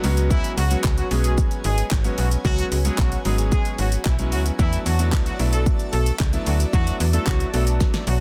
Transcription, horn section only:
0.30 0.51 E3 medium
0.30 0.51 E4 loud
0.57 0.78 F#3 medium
0.57 0.78 F#4 medium
0.97 1.08 F#3 medium
0.97 1.08 F#4 medium
1.24 1.35 G#3 medium
1.24 1.35 G#4 medium
1.64 1.85 G#3 medium
1.64 1.85 G#4 medium
2.18 2.29 F#3 medium
2.18 2.28 F#4 medium
2.45 2.66 F#3 medium
2.45 2.65 F#4 loud
2.85 2.96 G#3 medium
2.85 2.95 G#4 medium
2.98 3.19 F#3 medium
2.98 3.19 F#4 medium
3.25 3.36 G#3 medium
3.25 3.35 G#4 medium
3.52 3.73 G#3 medium
3.52 3.72 G#4 medium
3.79 3.89 F#3 medium
3.79 3.89 F#4 medium
4.05 4.16 E3 medium
4.05 4.16 E4 medium
4.32 4.43 F#3 medium
4.32 4.42 F#4 medium
4.59 4.80 E3 medium
4.59 4.79 E4 loud
4.86 5.07 F#3 medium
4.86 5.06 F#4 medium
5.26 5.37 F#3 medium
5.26 5.36 F#4 medium
5.53 5.63 A3 medium
5.53 5.63 A4 medium
5.93 6.14 A3 medium
5.93 6.13 A4 medium
6.47 6.57 F#3 medium
6.47 6.57 F#4 medium
6.73 6.94 F#3 medium
6.73 6.94 F#4 loud
7.13 7.24 A3 medium
7.13 7.24 A4 medium
7.27 7.48 F#3 medium
7.27 7.47 F#4 medium
7.54 7.65 A3 medium
7.54 7.64 A4 medium
8.07 8.18 F#3 medium
8.07 8.18 F#4 medium

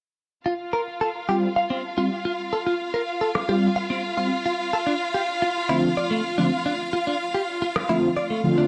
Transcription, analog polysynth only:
1.28 1.48 G3 medium
1.28 1.48 C4 medium
1.28 1.48 F4 medium
1.97 2.09 G3 medium
1.97 2.10 C4 medium
1.97 2.10 F4 medium
3.48 3.68 G3 medium
3.48 3.68 C4 medium
3.48 3.68 F4 medium
4.17 4.30 G3 medium
4.17 4.30 C4 medium
4.17 4.30 F4 medium
5.69 5.88 D3 medium
5.69 5.88 F3 medium
5.69 5.89 A3 medium
5.69 5.89 C4 medium
5.69 5.89 F4 medium
6.38 6.50 D3 medium
6.38 6.50 F3 medium
6.38 6.50 A3 medium
6.38 6.50 C4 medium
6.38 6.50 F4 medium
7.89 8.08 D3 medium
7.89 8.09 F3 medium
7.89 8.09 A3 medium
7.89 8.09 C4 medium
7.89 8.09 F4 medium
8.44 8.56 D3 medium
8.44 8.56 F3 medium
8.44 8.56 A3 medium
8.44 8.56 C4 medium
8.44 8.56 F4 loud
8.57 8.68 D3 medium
8.57 8.68 F3 medium
8.57 8.68 A3 medium
8.57 8.68 C4 medium
8.57 8.68 F4 medium

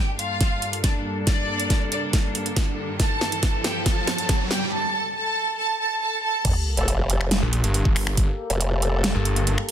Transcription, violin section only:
0.00 0.10 G4 medium
0.00 0.10 G5 medium
0.19 0.75 F4 medium
0.19 0.75 F5 medium
0.84 1.16 D4 medium
0.84 0.92 D5 medium
1.27 1.83 D4 medium
1.27 1.83 D5 loud
1.92 2.24 D4 medium
1.92 2.00 D5 medium
3.00 3.56 A4 medium
3.00 3.56 A5 medium
3.64 3.84 G4 medium
3.64 3.84 G5 medium
3.86 4.42 A4 medium
3.86 4.42 A5 loud
4.51 4.71 G4 medium
4.51 4.71 G5 medium
4.72 5.14 A4 medium
4.72 5.14 A5 loud
5.15 5.57 A4 medium
5.15 5.57 A5 loud
5.58 5.78 A4 medium
5.58 5.78 A5 loud
5.80 6.00 A4 medium
5.80 6.00 A5 loud
6.02 6.22 A4 medium
6.02 6.22 A5 loud
6.23 6.43 A4 medium
6.23 6.43 A5 loud

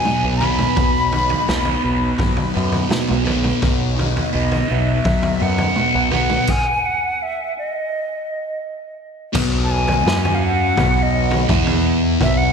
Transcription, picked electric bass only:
0.24 0.65 B1 medium
0.78 1.33 B1 medium
1.49 1.76 B1 medium
1.85 2.12 B1 medium
2.57 2.84 F#2 medium
3.10 3.52 B1 medium
3.63 4.19 B1 medium
4.34 4.62 B1 medium
4.71 4.99 B1 medium
5.41 5.69 F#2 medium
5.95 6.37 B1 medium
9.35 10.02 B1 medium
10.06 10.73 F#2 medium
10.78 11.45 B1 medium
11.50 12.16 E2 loud
12.21 12.53 B1 medium

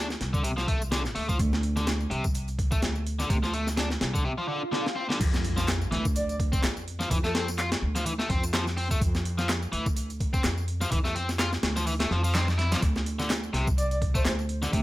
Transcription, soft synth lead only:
6.16 6.24 D5 medium
6.29 6.36 D5 medium
7.24 7.31 A4 medium
7.35 7.43 A4 medium
13.77 13.86 D5 medium
13.91 13.98 D5 medium
14.15 14.22 C5 medium
14.25 14.34 C5 medium

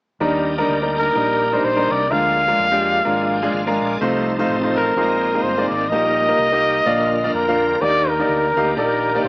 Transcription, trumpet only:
0.98 1.66 A#4 medium
1.64 1.93 C5 medium
1.91 2.13 D5 medium
2.11 3.81 F5 loud
4.76 5.44 A#4 medium
5.42 5.69 C5 medium
5.69 5.91 D5 medium
5.89 7.33 D#5 loud
7.34 7.83 A#4 medium
7.81 8.11 D5 loud
8.09 8.77 A#4 medium
8.77 9.21 A#4 medium
9.25 9.28 C5 medium

